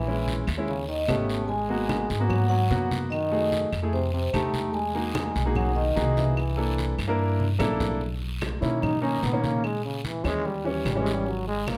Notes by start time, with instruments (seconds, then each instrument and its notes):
Already playing: upright bass A#1, trombone E3, vibraphone E5
0.07 grand piano G#3 C#4 E4, high conga
0.28 high conga, short guiro
0.47 upright bass D#2, high conga, short guiro, claves
0.57 grand piano G#3 C#4 E4
0.68 trombone C#3, vibraphone C#5, high conga, long guiro
0.88 trombone D#3, vibraphone D#5, high conga
1.07 upright bass G#1, trombone A3, grand piano B3 C#4 G4, vibraphone A5, high conga, short guiro, claves
1.30 short guiro
1.46 trombone G#3, vibraphone G#5, high conga, long guiro
1.69 grand piano A#3 B3 F#4, high conga
1.89 high conga, short guiro, claves
2.10 upright bass G#2, high conga, short guiro
2.20 grand piano A#3 B3 F#4
2.28 trombone F#3, vibraphone F#5, high conga, low conga, long guiro, claves
2.49 trombone F#3, vibraphone F#5, high conga
2.70 upright bass F#2, grand piano A#3 B3 F#4, high conga, short guiro
2.91 high conga, short guiro
3.09 trombone D#3, vibraphone D#5, high conga, long guiro, claves
3.31 grand piano A3 F#4 G#4, high conga
3.52 high conga, short guiro
3.72 upright bass F2, high conga, short guiro, claves
3.82 grand piano A3 E4 G#4
3.92 trombone C3, vibraphone C5, high conga, long guiro
4.13 trombone C3, vibraphone C5, high conga
4.33 upright bass E2, trombone A3, grand piano A3 D#4 G4, vibraphone A5, high conga, short guiro, claves
4.54 high conga, short guiro
4.73 trombone G#3, vibraphone G#5, high conga, long guiro
4.95 grand piano A#3 D#4 F#4 G#4, high conga
5.15 high conga, short guiro, claves
5.35 upright bass B1, high conga, short guiro
5.45 grand piano A#3 D#4 F#4 G#4
5.55 trombone F#3, vibraphone F#5, high conga, low conga, long guiro, claves
5.75 trombone D#3, vibraphone D#5, high conga
5.96 upright bass C2, grand piano A#3 D#4 F#4 G#4, high conga, short guiro
6.16 trombone E3, vibraphone E5, high conga, short guiro
6.37 high conga, long guiro, claves
6.57 grand piano A#3 D4 E4 A4, high conga
6.78 high conga, short guiro
6.98 upright bass G2, high conga, short guiro, claves
7.08 grand piano A#3 D4 E4 A#4
7.19 high conga, long guiro
7.40 high conga
7.59 upright bass B1, grand piano A#3 D4 E4 A4, low conga, short guiro, claves
7.80 low conga, short guiro
8.01 high conga, long guiro
8.21 high conga
8.41 high conga, short guiro, claves
8.61 upright bass B2, grand piano D#3 A#3 C#4, trombone E4, high conga, short guiro
8.82 trombone D#4, high conga, low conga, long guiro, claves
9.01 grand piano D#3 A#3 D#4, trombone C#4, high conga
9.23 upright bass A#2, trombone B3, high conga, short guiro
9.32 grand piano D#3 A#3 C#4
9.43 trombone A#3, high conga, short guiro
9.64 trombone G#3, high conga, long guiro, claves
9.85 trombone C#3, high conga
10.05 trombone E3, high conga, short guiro
10.24 upright bass D#2, grand piano E3 G#3 C#4, trombone G#3, high conga, short guiro, claves
10.45 trombone G3, high conga, long guiro
10.65 grand piano E3 G3 C#4, trombone E3, high conga
10.85 upright bass G#1, trombone G3, high conga, short guiro, claves
10.95 grand piano E3 G3 C#4
11.00 trombone G#3
11.06 short guiro
11.14 trombone G3
11.26 trombone F#3, high conga, long guiro
11.47 trombone G#3, high conga
11.67 trombone A#3, high conga, short guiro, claves